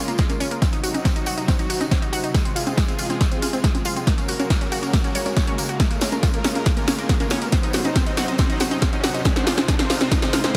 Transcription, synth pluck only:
0.08 0.14 A#3 medium
0.19 0.23 G#3 loud
0.30 0.33 A#3 medium
0.40 0.47 C#4 loud
0.51 0.57 A#3 medium
0.62 0.68 C4 medium
0.73 0.79 D#4 medium
0.83 0.90 F#4 medium
0.94 1.01 D#4 medium
1.05 1.09 C4 loud
1.16 1.20 D#4 medium
1.27 1.33 F#4 loud
1.37 1.44 D#4 medium
1.48 1.55 C4 medium
1.59 1.65 D#4 medium
1.70 1.76 F#4 medium
1.80 1.87 D#4 medium
1.91 1.95 C4 loud
2.02 2.06 D#4 medium
2.13 2.19 F#4 loud
2.23 2.30 D#4 medium
2.34 2.41 G#3 medium
2.45 2.52 C4 medium
2.56 2.62 F4 medium
2.67 2.71 C4 medium
2.77 2.81 G#3 loud
2.88 2.92 C4 medium
2.99 3.09 F4 medium
3.10 3.16 C4 medium
3.21 3.27 G#3 medium
3.31 3.38 C4 medium
3.42 3.49 F4 medium
3.53 3.60 C4 medium
3.64 3.68 G#3 loud
3.75 3.79 C4 medium
3.85 3.92 F4 loud
3.96 4.03 C4 medium
4.07 4.14 A#3 medium
4.18 4.24 C#4 medium
4.29 4.35 F#4 medium
4.40 4.46 C#4 medium
4.50 4.54 A#3 loud
4.61 4.65 C#4 medium
4.72 4.78 F#4 loud
4.83 4.89 C#4 medium
4.94 5.00 A#3 medium
5.04 5.11 C#4 medium
5.15 5.22 C#5 medium
5.26 5.35 C#4 medium
5.37 5.43 C#5 medium
5.47 5.51 C#4 loud
5.58 5.65 A#3 medium
5.69 5.79 F#4 medium
5.80 5.86 G#3 medium
5.91 5.97 A#3 medium
6.02 6.08 C#4 medium
6.12 6.16 A#3 medium
6.23 6.29 F4 medium
6.34 6.38 A#3 medium
6.45 6.54 C#4 medium
6.55 6.62 A#3 medium
6.66 6.73 G#3 medium
6.77 6.83 A#3 medium
6.88 6.94 C#4 medium
6.99 7.05 A#3 medium
7.09 7.13 G#3 loud
7.20 7.24 A#3 medium
7.31 7.37 C#4 loud
7.42 7.48 A#3 medium
7.53 7.59 C4 medium
7.63 7.70 D#4 medium
7.74 7.80 F#4 medium
7.85 7.91 D#4 medium
7.96 7.99 C4 loud
8.06 8.10 D#4 medium
8.17 8.24 F#4 loud
8.28 8.34 D#4 medium
8.39 8.45 C4 medium
8.50 8.56 D#4 medium
8.60 8.67 F#4 medium
8.71 8.78 D#4 medium
8.82 8.86 C4 loud
8.93 8.97 D#4 medium
9.03 9.10 F#4 loud
9.14 9.21 D#4 medium
9.25 9.31 G#3 medium
9.36 9.42 C4 medium
9.47 9.53 F4 medium
9.57 9.61 C4 medium
9.68 9.75 G#4 medium
9.79 9.83 C4 medium
9.90 10.00 F4 medium
10.01 10.07 C4 medium
10.12 10.18 G#3 medium
10.22 10.29 C4 medium
10.33 10.39 F4 medium
10.44 10.50 C4 medium

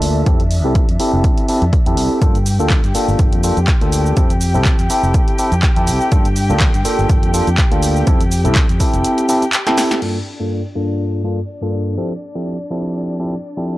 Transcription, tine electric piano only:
0.00 0.24 A#3 medium
0.00 0.24 D4 medium
0.00 0.24 F4 medium
0.00 0.24 A4 medium
0.26 0.41 C4 medium
0.26 0.41 E4 medium
0.26 0.41 G4 medium
0.26 0.41 A4 medium
0.64 0.85 C4 medium
0.64 0.85 E4 medium
0.64 0.85 G4 medium
0.64 0.85 A4 medium
0.99 1.46 C4 medium
0.99 1.46 E4 medium
0.99 1.46 G4 medium
0.99 1.46 A4 medium
1.48 1.63 C4 medium
1.48 1.63 E4 medium
1.48 1.63 G4 medium
1.48 1.63 A4 medium
1.86 2.19 C4 medium
1.86 2.19 E4 medium
1.86 2.19 G4 medium
1.86 2.19 A4 medium
2.22 2.36 A#3 medium
2.22 2.36 D4 medium
2.22 2.36 F4 medium
2.22 2.36 A4 medium
2.59 2.80 A#3 medium
2.59 2.80 D4 medium
2.59 2.80 F4 medium
2.59 2.81 A4 medium
2.95 3.41 A#3 medium
2.95 3.41 D4 medium
2.95 3.41 F4 medium
2.95 3.41 A4 medium
3.43 3.58 A#3 medium
3.43 3.58 D4 medium
3.43 3.58 F4 medium
3.43 3.58 A4 medium
3.81 4.14 A#3 medium
3.81 4.14 D4 medium
3.81 4.14 F4 medium
3.81 4.14 A4 medium
4.16 4.31 C4 medium
4.16 4.31 E4 medium
4.16 4.31 G4 medium
4.16 4.31 A4 medium
4.54 4.75 C4 medium
4.54 4.75 E4 medium
4.54 4.75 G4 medium
4.54 4.76 A4 medium
4.90 5.36 C4 medium
4.90 5.36 E4 medium
4.90 5.36 G4 medium
4.90 5.36 A4 medium
5.39 5.53 C4 medium
5.39 5.53 E4 medium
5.39 5.53 G4 medium
5.39 5.53 A4 medium
5.76 6.09 C4 medium
5.76 6.09 E4 medium
5.76 6.09 G4 medium
5.76 6.10 A4 medium
6.11 6.26 A#3 medium
6.11 6.26 D4 medium
6.11 6.26 F4 medium
6.11 6.26 A4 medium
6.49 6.70 A#3 medium
6.49 6.70 D4 medium
6.49 6.71 F4 medium
6.49 6.71 A4 medium
6.85 7.31 A#3 medium
6.85 7.31 D4 medium
6.85 7.31 F4 medium
6.85 7.31 A4 medium
7.33 7.48 A#3 medium
7.33 7.48 D4 medium
7.33 7.48 F4 medium
7.33 7.48 A4 medium
7.71 8.04 A#3 medium
7.71 8.04 D4 medium
7.71 8.04 F4 medium
7.71 8.05 A4 medium
8.06 8.21 C4 medium
8.06 8.21 E4 medium
8.06 8.21 G4 medium
8.06 8.21 A4 loud
8.44 8.65 C4 medium
8.44 8.65 E4 medium
8.44 8.65 G4 medium
8.44 8.66 A4 medium
8.79 9.26 C4 medium
8.79 9.26 E4 medium
8.79 9.26 G4 medium
8.79 9.26 A4 medium
9.29 9.43 C4 medium
9.29 9.43 E4 medium
9.29 9.43 G4 medium
9.29 9.44 A4 medium
9.67 9.99 C4 medium
9.67 9.99 E4 medium
9.67 10.00 G4 medium
9.67 10.00 A4 medium
10.02 10.16 G2 medium
10.02 10.16 A#3 medium
10.40 10.60 G2 medium
10.40 10.61 A#3 medium
10.40 10.61 D4 medium
10.40 10.61 F4 medium
10.40 10.61 A4 medium
10.75 11.21 G2 medium
10.75 11.21 A#3 medium
10.75 11.22 D4 medium
10.75 11.22 F4 medium
10.75 11.22 A4 medium
11.24 11.38 G2 medium
11.24 11.38 A#3 medium
11.24 11.39 D4 medium
11.24 11.39 F4 medium
11.24 11.39 A4 medium
11.62 11.95 G2 medium
11.62 11.95 A#3 medium
11.62 11.95 D4 medium
11.62 11.95 F4 medium
11.62 11.95 A4 medium
11.97 12.12 F3 medium
11.97 12.12 C4 medium
11.97 12.12 E4 medium
11.97 12.12 G4 medium
11.97 12.12 A4 medium
12.35 12.56 F3 medium
12.35 12.56 C4 medium
12.35 12.56 E4 medium
12.35 12.56 G4 medium
12.35 12.56 A4 medium
12.70 13.17 F3 medium
12.70 13.17 C4 medium
12.70 13.17 E4 medium
12.70 13.17 G4 medium
12.70 13.17 A4 medium
13.19 13.34 F3 medium
13.19 13.34 C4 medium
13.19 13.34 E4 medium
13.19 13.34 G4 medium
13.19 13.34 A4 medium
13.57 13.78 F3 medium
13.57 13.78 C4 medium
13.57 13.78 E4 medium
13.57 13.78 G4 medium
13.57 13.78 A4 medium

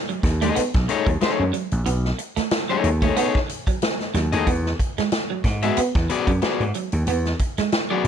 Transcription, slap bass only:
0.24 0.49 D#2 medium
0.57 muted slap bass stroke medium
0.75 0.86 B1 loud
1.06 1.18 D#2 medium
1.22 muted slap bass stroke soft
1.39 1.51 F#2 medium
1.72 1.83 A#1 medium
1.86 2.11 B1 loud
2.37 muted slap bass stroke medium
2.84 3.09 D#2 medium
4.14 4.28 D#2 medium
4.33 4.44 D#2 loud
4.47 4.72 E2 loud
4.98 muted slap bass stroke soft
5.44 5.69 G#2 loud
5.77 muted slap bass stroke medium
5.95 6.06 E2 loud
6.27 6.39 F#2 medium
6.43 muted slap bass stroke medium
6.60 6.71 G#2 medium
6.93 7.04 D#2 medium
7.07 7.32 E2 loud
7.58 muted slap bass stroke medium
8.04 8.08 G#2 medium

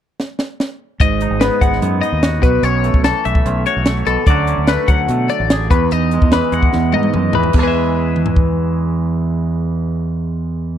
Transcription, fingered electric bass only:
1.00 1.28 G#1 medium
1.30 1.49 G#1 medium
1.61 1.80 G#1 medium
1.82 2.00 F#2 medium
2.12 2.43 D#2 medium
2.43 2.61 B1 medium
2.63 2.91 B1 medium
2.94 3.12 B1 medium
3.26 3.44 B1 medium
3.46 3.64 B1 medium
3.77 4.04 B1 medium
4.07 4.16 B1 medium
4.27 4.55 D2 medium
4.58 4.76 D2 medium
4.88 5.07 D2 medium
5.09 5.27 B2 medium
5.40 5.70 A1 medium
5.70 5.89 E2 medium
5.93 6.20 E2 medium
6.22 6.40 E2 medium
6.52 6.71 E2 medium
6.73 6.92 E2 medium
6.94 7.13 G#2 medium
7.15 7.33 F#2 medium
7.36 7.54 E2 medium
7.54 10.78 E2 medium

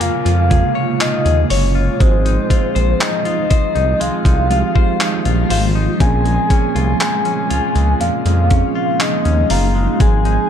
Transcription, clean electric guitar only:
0.00 2.00 A#3 medium
0.00 0.25 F4 medium
0.00 0.50 G#4 medium
0.00 0.74 C#5 medium
0.25 1.00 F4 medium
0.50 1.25 G#4 medium
0.75 1.49 C#5 medium
1.00 1.75 F4 medium
1.25 2.50 G#4 medium
1.50 2.10 C#5 medium
1.75 2.25 F4 medium
2.00 4.00 G#3 medium
2.25 2.99 D#4 medium
2.50 3.25 F4 medium
2.75 3.49 C5 medium
3.00 3.74 D#4 medium
3.25 4.50 F4 medium
3.50 4.74 C5 medium
3.75 4.24 D#4 medium
4.00 6.25 G#3 medium
4.25 4.99 D#4 medium
4.50 5.25 F4 medium
4.75 5.49 C5 medium
5.00 5.74 D#4 medium
5.25 6.75 F4 medium
5.50 6.10 C5 medium
5.75 6.10 D#4 medium
6.00 7.99 A#2 medium
6.25 7.00 G#3 medium
6.50 7.24 C#4 medium
6.75 7.50 F4 medium
7.00 7.75 G#3 medium
7.25 8.49 C#4 medium
7.50 8.75 F4 medium
7.75 8.25 G#3 medium
8.00 10.10 A#2 medium
8.25 9.00 G#3 medium
8.50 9.24 C#4 medium
8.75 9.50 F4 medium
9.00 9.75 G#3 medium
9.25 10.10 C#4 medium
9.50 10.28 F4 medium
9.75 10.00 G#3 medium
10.00 10.50 G#3 medium
10.25 10.50 D#4 medium

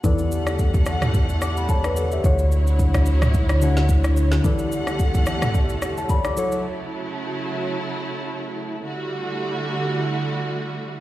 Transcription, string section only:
0.04 6.33 D3 medium
0.04 2.22 G3 medium
0.04 2.22 A3 medium
0.04 2.22 F#5 medium
2.24 4.42 F#3 medium
2.24 4.42 E4 medium
2.24 4.42 C#5 medium
4.44 6.35 E2 medium
4.44 6.35 G3 medium
4.44 6.35 A3 medium
4.44 6.35 F#5 medium
6.37 8.82 C#3 medium
6.37 8.82 F#3 medium
6.37 8.82 A3 medium
6.37 8.82 E4 medium
8.85 11.00 D3 medium
8.85 11.00 G3 medium
8.85 11.00 A3 medium
8.85 11.00 E4 medium
8.85 11.00 F#4 medium

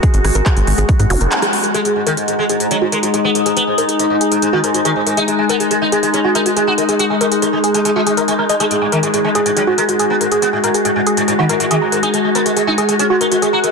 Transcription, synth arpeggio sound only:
0.03 0.08 G#4 loud
0.14 0.19 G#4 medium
0.24 0.30 G#5 medium
0.35 0.43 A#4 loud
0.46 0.49 G#4 medium
0.57 0.62 G#4 medium
0.67 0.73 G#5 medium
0.78 0.86 G#4 loud
0.89 0.94 G#4 medium
0.99 1.05 G#4 medium
1.10 1.16 F#4 loud
1.21 1.29 A#4 loud
1.32 1.40 F#4 medium
1.42 1.46 G#4 loud
1.53 1.58 A#5 medium
1.64 1.72 A#4 medium
1.74 1.80 G#4 loud
1.85 1.91 G#4 medium
1.96 2.01 G#5 medium
2.07 2.15 A#4 loud
2.17 2.21 G#4 medium
2.28 2.33 G#4 medium
2.39 2.44 G#5 medium
2.49 2.58 G#4 loud
2.60 2.66 G#4 medium
2.71 2.76 G#4 medium
2.82 2.87 F#4 loud
2.92 3.00 A#4 loud
3.03 3.11 F#4 medium
3.14 3.17 G#4 loud
3.24 3.30 A#5 medium
3.35 3.43 A#4 medium
3.46 3.51 G#4 loud
3.57 3.62 G#4 medium
3.67 3.73 G#5 medium
3.78 3.86 A#4 loud
3.89 3.92 G#4 medium
3.99 4.05 G#4 medium
4.10 4.16 G#5 medium
4.21 4.29 G#4 loud
4.32 4.37 G#4 medium
4.42 4.48 G#4 medium
4.53 4.58 F#4 loud
4.64 4.72 A#4 loud
4.74 4.83 F#4 medium
4.85 4.88 G#4 loud
4.96 5.01 A#5 medium
5.07 5.15 A#4 medium
5.17 5.23 G#4 loud
5.28 5.33 G#4 medium
5.39 5.44 G#5 medium
5.49 5.58 A#4 loud
5.60 5.63 G#4 medium
5.71 5.76 G#4 medium
5.82 5.87 G#5 medium
5.92 6.00 G#4 loud
6.03 6.08 G#4 medium
6.14 6.19 G#4 medium
6.24 6.30 F#4 loud
6.35 6.43 A#4 loud
6.46 6.54 F#4 medium
6.57 6.60 G#4 loud
6.67 6.73 A#5 medium
6.78 6.86 A#4 medium
6.89 6.94 G#4 loud
7.00 7.05 G#4 medium
7.10 7.16 G#5 medium
7.21 7.29 A#4 loud
7.32 7.35 G#4 medium
7.42 7.48 G#4 medium
7.53 7.58 G#5 medium
7.64 7.72 G#4 loud
7.74 7.80 G#4 medium
7.85 7.91 G#4 medium
7.96 8.04 F#4 medium
8.07 8.10 G#4 loud
8.17 8.23 A#4 loud
8.28 8.33 G#5 medium
8.39 8.44 A#4 loud
8.49 8.55 D#5 loud
8.60 8.66 G#4 loud
8.71 8.76 G#4 medium
8.82 8.87 G#5 medium
8.92 9.00 A#4 loud
9.03 9.06 G#4 medium
9.14 9.19 G#4 medium
9.24 9.30 G#5 medium
9.35 9.43 G#4 loud
9.46 9.51 G#4 medium
9.57 9.62 G#4 medium
9.67 9.73 F#4 loud
9.78 9.86 A#4 loud
9.89 9.97 F#4 medium
9.99 10.03 G#4 loud
10.10 10.16 A#5 medium
10.21 10.29 A#4 medium
10.32 10.37 G#4 loud
10.42 10.48 G#4 medium
10.53 10.58 G#5 medium
10.64 10.72 A#4 loud
10.74 10.78 G#4 medium
10.85 10.91 G#4 medium
10.96 11.01 G#5 medium
11.07 11.15 G#4 loud
11.17 11.23 G#4 medium
11.28 11.33 G#4 medium
11.39 11.44 F#4 loud
11.49 11.58 A#4 loud
11.60 11.68 F#4 medium
11.71 11.74 G#4 loud
11.82 11.87 A#5 medium
11.92 12.00 A#4 medium
12.03 12.08 G#4 loud
12.14 12.19 G#4 medium
12.24 12.30 G#5 medium
12.35 12.43 A#4 loud
12.46 12.49 G#4 medium
12.57 12.62 G#4 medium
12.67 12.73 G#5 medium
12.78 12.86 G#4 loud
12.89 12.94 G#4 medium
12.99 13.05 G#4 medium
13.10 13.16 F#4 loud
13.21 13.29 A#4 loud
13.32 13.40 F#4 medium
13.42 13.46 G#4 loud
13.53 13.58 A#5 medium
13.64 13.71 A#4 medium

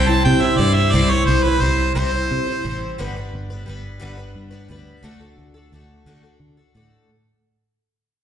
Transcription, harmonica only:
0.09 0.24 A5 medium
0.24 0.43 G5 medium
0.41 0.59 E5 medium
0.57 0.75 D5 medium
0.73 0.93 E5 medium
0.92 1.11 D5 medium
1.10 1.25 C#5 medium
1.26 1.45 C5 medium
1.43 1.62 B4 medium
1.61 1.94 C5 medium
1.95 2.95 C5 medium

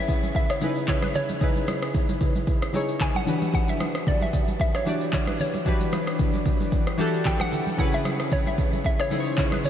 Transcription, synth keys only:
0.00 0.14 C#3 medium
0.00 0.14 C#4 medium
0.00 0.15 E4 medium
0.00 0.15 G#4 medium
0.00 0.15 B4 medium
0.60 1.26 C#3 medium
0.60 1.26 D#4 medium
0.60 1.27 E4 medium
0.60 1.27 G#4 medium
0.60 1.27 B4 medium
1.40 2.26 C#3 medium
1.40 2.27 D#4 medium
1.40 2.27 E4 medium
1.40 2.27 G#4 medium
1.40 2.28 B4 medium
2.73 3.26 C#3 medium
2.73 3.27 D#4 medium
2.73 3.27 E4 medium
2.73 3.28 G#4 medium
2.73 3.28 C#5 medium
3.26 4.12 E3 medium
3.26 4.12 D4 medium
3.26 4.13 F#4 medium
3.26 4.13 G4 medium
3.26 4.14 B4 medium
4.85 5.51 E3 medium
4.85 5.51 D4 medium
4.85 5.51 F#4 medium
4.85 5.52 G4 medium
4.85 5.52 D5 medium
5.65 6.51 E3 medium
5.65 6.51 D4 medium
5.65 6.52 F#4 medium
5.65 6.52 G4 medium
5.65 6.53 B4 medium
6.98 7.63 E3 medium
6.98 7.63 D4 medium
6.98 7.64 F#4 medium
6.98 7.64 G4 medium
6.98 7.65 A4 medium
7.77 8.63 C#3 medium
7.77 8.64 C#4 medium
7.77 8.64 E4 medium
7.77 8.65 G#4 medium
7.77 8.65 B4 medium
9.10 9.70 C#3 medium
9.10 9.70 D#4 medium
9.10 9.70 E4 medium
9.10 9.70 G#4 medium
9.10 9.19 C5 medium
9.20 9.70 C#5 medium

